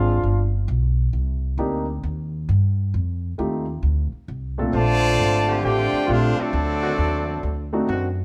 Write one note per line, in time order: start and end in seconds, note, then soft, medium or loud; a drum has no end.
0.00 0.23 G#1 medium
0.00 0.22 G#3 medium
0.00 0.22 C4 medium
0.00 0.52 D4 medium
0.00 0.51 F4 medium
0.24 0.67 G1 medium
0.68 1.12 B1 loud
1.13 1.57 C2 medium
1.58 2.02 D2 medium
1.58 1.85 A#3 medium
1.58 1.85 C4 medium
1.58 1.85 D4 medium
1.58 1.85 D#4 medium
1.58 1.85 G4 medium
2.03 2.47 D#2 medium
2.49 2.92 G2 loud
2.94 3.37 F2 medium
3.38 3.82 D#2 medium
3.38 3.65 A3 medium
3.38 3.65 C4 medium
3.38 3.65 D#4 medium
3.38 3.65 F4 medium
3.38 3.65 G4 medium
3.83 4.10 D2 medium
4.12 muted upright bass stroke soft
4.28 4.72 C2 medium
4.58 4.72 A#2 medium
4.58 4.72 A3 medium
4.58 4.72 C4 medium
4.58 4.72 D4 medium
4.58 4.73 F4 medium
4.58 4.73 A4 medium
4.73 5.17 A#1 medium
4.73 5.59 D3 loud
4.73 5.59 F3 loud
4.73 5.59 A3 medium
4.73 5.60 F4 loud
4.73 5.60 C5 loud
4.73 5.60 D5 loud
4.73 5.60 A5 loud
5.19 5.62 G#1 medium
5.47 6.05 D3 loud
5.47 6.05 A3 loud
5.47 6.05 C4 loud
5.47 6.05 G4 loud
5.63 5.90 A1 medium
5.63 6.08 A3 medium
5.63 6.08 D4 medium
5.63 6.09 F4 medium
5.63 6.08 G4 medium
5.63 6.09 C5 medium
5.63 6.09 D5 medium
5.63 6.09 G5 loud
5.92 muted upright bass stroke soft
6.07 6.35 A#1 medium
6.07 6.28 D3 medium
6.07 6.27 A3 medium
6.07 6.37 A3 medium
6.07 6.54 A3 medium
6.07 6.27 C4 medium
6.07 6.54 C4 medium
6.07 6.54 D4 medium
6.07 6.37 D4 medium
6.07 6.27 F4 loud
6.07 6.38 F4 medium
6.07 6.54 F4 medium
6.07 6.54 G4 medium
6.07 6.39 A4 medium
6.11 6.39 D4 medium
6.11 6.39 C5 medium
6.11 6.39 F5 loud
6.38 7.72 F#3 medium
6.38 7.72 A3 medium
6.38 7.73 C4 medium
6.38 7.73 D4 medium
6.38 7.74 F#4 medium
6.38 7.74 A4 medium
6.38 7.73 D5 loud
6.38 muted upright bass stroke soft
6.53 6.97 D2 loud
6.83 6.93 D#3 loud
6.83 6.93 C4 medium
6.83 6.93 D4 medium
6.83 6.93 F#4 loud
6.98 7.42 D#2 loud
7.43 7.87 D2 medium
7.73 7.87 A3 medium
7.73 7.87 C4 medium
7.73 7.87 D4 medium
7.73 7.87 D#4 medium
7.73 7.87 F#4 medium
7.88 8.25 F#2 loud
7.88 8.08 D#3 loud
7.88 8.08 C4 medium
7.88 8.08 D4 medium
7.88 8.08 F#4 loud